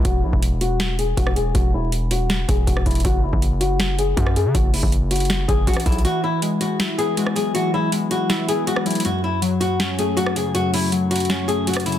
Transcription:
0.05 808-style bass E1, nylon-string guitar F#4, kick, closed hi-hat
0.24 808-style bass B1, nylon-string guitar E4
0.33 808-style bass E1, kick
0.42 closed hi-hat
0.61 nylon-string guitar F#4, closed hi-hat
0.80 snare, closed hi-hat
0.99 nylon-string guitar G#4, closed hi-hat
1.17 808-style bass E1, nylon-string guitar F#4, kick, closed hi-hat
1.27 cross-stick
1.36 nylon-string guitar G#4, closed hi-hat
1.54 808-style bass E1, nylon-string guitar F#4, kick, closed hi-hat
1.74 nylon-string guitar E4
1.92 closed hi-hat
2.11 nylon-string guitar F#4, closed hi-hat
2.30 snare, closed hi-hat
2.49 808-style bass E1, nylon-string guitar G#4, kick, closed hi-hat
2.67 808-style bass E1, nylon-string guitar F#4, kick, closed hi-hat
2.77 cross-stick
2.86 808-style bass E1, nylon-string guitar E4, kick, closed hi-hat
2.91 closed hi-hat
2.95 closed hi-hat
3.00 closed hi-hat
3.05 808-style bass F#1, nylon-string guitar F#4, kick, closed hi-hat
3.24 nylon-string guitar E4
3.33 808-style bass F#1, kick
3.42 closed hi-hat
3.60 nylon-string guitar F#4, closed hi-hat
3.80 snare, closed hi-hat
3.99 nylon-string guitar G#4, closed hi-hat
4.16 808-style bass F#2, nylon-string guitar F#4, kick, closed hi-hat
4.26 cross-stick
4.36 nylon-string guitar G#4, closed hi-hat
4.45 808-style bass C#3
4.55 808-style bass F#1, nylon-string guitar F#4, kick, closed hi-hat
4.74 nylon-string guitar E4, open hi-hat
4.83 808-style bass F#1, kick
4.92 closed hi-hat
5.11 nylon-string guitar F#4, closed hi-hat
5.16 closed hi-hat
5.20 closed hi-hat
5.25 closed hi-hat
5.30 snare, closed hi-hat
5.48 808-style bass F#1, nylon-string guitar G#4, kick, closed hi-hat
5.67 808-style bass A1, nylon-string guitar F#4, kick, closed hi-hat
5.73 cross-stick, closed hi-hat
5.80 closed hi-hat
5.86 808-style bass B1, nylon-string guitar E4, kick, closed hi-hat
5.92 closed hi-hat
5.98 closed hi-hat
6.05 synth keys E3, nylon-string guitar F#4, closed hi-hat
6.24 nylon-string guitar E4
6.42 synth keys G#3, closed hi-hat
6.61 nylon-string guitar F#4, closed hi-hat
6.80 synth keys E4, snare, closed hi-hat
6.98 synth keys B3, nylon-string guitar G#4, closed hi-hat
7.17 synth keys G#3, nylon-string guitar F#4, closed hi-hat
7.27 cross-stick
7.36 synth keys F#3, nylon-string guitar G#4, closed hi-hat
7.54 synth keys E3, nylon-string guitar F#4, closed hi-hat
7.74 nylon-string guitar E4
7.92 synth keys G#3, closed hi-hat
8.11 nylon-string guitar F#4, closed hi-hat
8.30 synth keys E4, snare, closed hi-hat
8.47 synth keys B3, nylon-string guitar G#4, closed hi-hat
8.67 synth keys G#3, nylon-string guitar F#4, closed hi-hat
8.76 cross-stick
8.85 synth keys F#3, nylon-string guitar E4, closed hi-hat
8.91 closed hi-hat
8.95 closed hi-hat
9.00 closed hi-hat
9.05 synth keys F#2, nylon-string guitar F#4, closed hi-hat
9.24 nylon-string guitar E4
9.42 synth keys F#3, closed hi-hat
9.60 nylon-string guitar F#4, closed hi-hat
9.79 synth keys C#4, snare, closed hi-hat
9.98 synth keys A3, nylon-string guitar G#4, closed hi-hat
10.17 synth keys F#3, nylon-string guitar F#4, closed hi-hat
10.27 cross-stick
10.36 synth keys C#3, nylon-string guitar G#4, closed hi-hat
10.55 synth keys F#2, nylon-string guitar F#4, closed hi-hat
10.74 nylon-string guitar E4, open hi-hat
10.92 synth keys F#3, closed hi-hat
11.11 nylon-string guitar F#4, closed hi-hat
11.16 closed hi-hat
11.20 closed hi-hat
11.25 closed hi-hat
11.30 synth keys C#4, snare, closed hi-hat
11.48 synth keys A3, nylon-string guitar G#4, closed hi-hat
11.67 synth keys F#3, nylon-string guitar F#4, closed hi-hat
11.74 cross-stick, closed hi-hat
11.80 closed hi-hat
11.86 synth keys C#3, nylon-string guitar E4, closed hi-hat
11.92 closed hi-hat

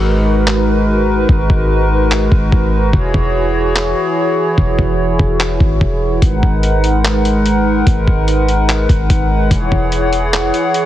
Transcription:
Already playing: 808-style bass G#1, analog synth pad G#3 D#4 F#4 A#4 B4
0.47 clap
1.29 808-style bass G#1, kick
1.50 808-style bass G#1, kick
2.12 clap
2.32 808-style bass G#1, kick
2.52 808-style bass G#1, kick
2.93 808-style bass E1, analog synth pad E3 E4 F#4 G#4 C#5, kick
3.14 808-style bass E1, kick
3.76 clap
4.58 808-style bass E1, kick
4.79 808-style bass E1, kick
5.19 808-style bass E1, kick
5.40 clap
5.60 808-style bass G#1, kick
5.81 808-style bass E1, kick
6.22 808-style bass G#1, analog synth pad G#3 D#4 A#4 B4 F#5, kick, closed hi-hat
6.43 808-style bass G#1, kick
6.63 closed hi-hat
6.84 closed hi-hat
7.05 clap, closed hi-hat
7.25 closed hi-hat
7.46 closed hi-hat
7.87 808-style bass G#1, kick, closed hi-hat
8.07 808-style bass G#1, kick
8.28 closed hi-hat
8.48 closed hi-hat
8.69 clap, closed hi-hat
8.89 808-style bass G#1, kick, closed hi-hat
9.10 808-style bass G#1, kick, closed hi-hat
9.51 808-style bass E1, analog synth pad E3 E4 G#4 C#5, kick, closed hi-hat
9.72 808-style bass E1, kick
9.92 closed hi-hat
10.13 closed hi-hat
10.33 clap, closed hi-hat
10.54 closed hi-hat
10.74 closed hi-hat

